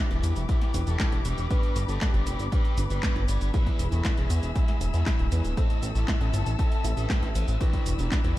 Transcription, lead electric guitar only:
0, 0, Header, 1, 2, 480
1, 0, Start_track
1, 0, Tempo, 508475
1, 1421, Time_signature, 4, 2, 24, 8
1, 7915, End_track
2, 0, Start_track
2, 0, Title_t, "Lead electric guitar"
2, 0, Program_c, 0, 29
2, 100, Note_on_c, 0, 55, 76
2, 103, Note_on_c, 0, 64, 78
2, 384, Note_off_c, 0, 55, 0
2, 384, Note_off_c, 0, 64, 0
2, 458, Note_on_c, 0, 64, 80
2, 463, Note_on_c, 0, 67, 82
2, 744, Note_off_c, 0, 64, 0
2, 744, Note_off_c, 0, 67, 0
2, 820, Note_on_c, 0, 64, 78
2, 824, Note_on_c, 0, 69, 83
2, 1104, Note_off_c, 0, 64, 0
2, 1104, Note_off_c, 0, 69, 0
2, 1180, Note_on_c, 0, 67, 78
2, 1184, Note_on_c, 0, 71, 88
2, 1370, Note_off_c, 0, 67, 0
2, 1370, Note_off_c, 0, 71, 0
2, 1418, Note_on_c, 0, 67, 81
2, 1423, Note_on_c, 0, 71, 89
2, 1704, Note_off_c, 0, 67, 0
2, 1705, Note_off_c, 0, 71, 0
2, 1780, Note_on_c, 0, 65, 74
2, 1784, Note_on_c, 0, 69, 87
2, 1970, Note_off_c, 0, 65, 0
2, 1970, Note_off_c, 0, 69, 0
2, 2021, Note_on_c, 0, 67, 88
2, 2023, Note_on_c, 0, 59, 67
2, 2305, Note_off_c, 0, 59, 0
2, 2305, Note_off_c, 0, 67, 0
2, 2379, Note_on_c, 0, 67, 76
2, 2382, Note_on_c, 0, 71, 83
2, 2664, Note_off_c, 0, 67, 0
2, 2664, Note_off_c, 0, 71, 0
2, 2740, Note_on_c, 0, 67, 83
2, 2743, Note_on_c, 0, 71, 86
2, 3024, Note_off_c, 0, 71, 0
2, 3025, Note_off_c, 0, 67, 0
2, 3100, Note_on_c, 0, 71, 76
2, 3104, Note_on_c, 0, 74, 84
2, 3290, Note_off_c, 0, 71, 0
2, 3290, Note_off_c, 0, 74, 0
2, 3340, Note_on_c, 0, 68, 78
2, 3344, Note_on_c, 0, 71, 83
2, 3624, Note_off_c, 0, 68, 0
2, 3625, Note_off_c, 0, 71, 0
2, 3700, Note_on_c, 0, 64, 76
2, 3704, Note_on_c, 0, 69, 78
2, 3890, Note_off_c, 0, 64, 0
2, 3890, Note_off_c, 0, 69, 0
2, 3940, Note_on_c, 0, 64, 86
2, 3944, Note_on_c, 0, 68, 81
2, 4224, Note_off_c, 0, 64, 0
2, 4224, Note_off_c, 0, 68, 0
2, 4299, Note_on_c, 0, 56, 79
2, 4304, Note_on_c, 0, 64, 76
2, 4584, Note_off_c, 0, 56, 0
2, 4584, Note_off_c, 0, 64, 0
2, 4661, Note_on_c, 0, 56, 77
2, 4664, Note_on_c, 0, 64, 79
2, 4945, Note_off_c, 0, 56, 0
2, 4945, Note_off_c, 0, 64, 0
2, 5019, Note_on_c, 0, 56, 73
2, 5025, Note_on_c, 0, 64, 70
2, 5210, Note_off_c, 0, 56, 0
2, 5210, Note_off_c, 0, 64, 0
2, 5259, Note_on_c, 0, 60, 77
2, 5264, Note_on_c, 0, 69, 89
2, 5545, Note_off_c, 0, 60, 0
2, 5545, Note_off_c, 0, 69, 0
2, 5619, Note_on_c, 0, 64, 88
2, 5623, Note_on_c, 0, 67, 81
2, 5810, Note_off_c, 0, 64, 0
2, 5810, Note_off_c, 0, 67, 0
2, 5859, Note_on_c, 0, 60, 85
2, 5863, Note_on_c, 0, 64, 86
2, 6144, Note_off_c, 0, 60, 0
2, 6144, Note_off_c, 0, 64, 0
2, 6219, Note_on_c, 0, 60, 82
2, 6223, Note_on_c, 0, 69, 80
2, 6504, Note_off_c, 0, 60, 0
2, 6504, Note_off_c, 0, 69, 0
2, 6581, Note_on_c, 0, 67, 81
2, 6586, Note_on_c, 0, 71, 82
2, 6865, Note_off_c, 0, 67, 0
2, 6866, Note_off_c, 0, 71, 0
2, 6941, Note_on_c, 0, 69, 82
2, 6944, Note_on_c, 0, 72, 79
2, 7130, Note_off_c, 0, 69, 0
2, 7130, Note_off_c, 0, 72, 0
2, 7180, Note_on_c, 0, 64, 77
2, 7183, Note_on_c, 0, 67, 82
2, 7464, Note_off_c, 0, 64, 0
2, 7465, Note_off_c, 0, 67, 0
2, 7539, Note_on_c, 0, 62, 85
2, 7545, Note_on_c, 0, 65, 77
2, 7730, Note_off_c, 0, 62, 0
2, 7730, Note_off_c, 0, 65, 0
2, 7781, Note_on_c, 0, 64, 97
2, 7784, Note_on_c, 0, 55, 80
2, 7915, Note_off_c, 0, 55, 0
2, 7915, Note_off_c, 0, 64, 0
2, 7915, End_track
0, 0, End_of_file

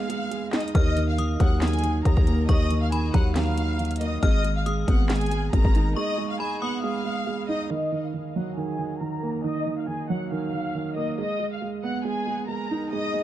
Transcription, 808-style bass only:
0, 0, Header, 1, 2, 480
1, 0, Start_track
1, 0, Key_signature, -6, "minor"
1, 0, Tempo, 434783
1, 827, Time_signature, 4, 2, 24, 8
1, 14609, End_track
2, 0, Start_track
2, 0, Title_t, "808-style bass"
2, 0, Program_c, 0, 38
2, 827, Note_on_c, 0, 39, 114
2, 1518, Note_off_c, 0, 39, 0
2, 1547, Note_on_c, 0, 39, 111
2, 2238, Note_off_c, 0, 39, 0
2, 2267, Note_on_c, 0, 39, 107
2, 2389, Note_off_c, 0, 39, 0
2, 2394, Note_on_c, 0, 39, 100
2, 2733, Note_off_c, 0, 39, 0
2, 2747, Note_on_c, 0, 39, 109
2, 3438, Note_off_c, 0, 39, 0
2, 3467, Note_on_c, 0, 39, 113
2, 4622, Note_off_c, 0, 39, 0
2, 4667, Note_on_c, 0, 32, 114
2, 5358, Note_off_c, 0, 32, 0
2, 5387, Note_on_c, 0, 32, 109
2, 6078, Note_off_c, 0, 32, 0
2, 6107, Note_on_c, 0, 32, 110
2, 6229, Note_off_c, 0, 32, 0
2, 6234, Note_on_c, 0, 32, 103
2, 6573, Note_off_c, 0, 32, 0
2, 14609, End_track
0, 0, End_of_file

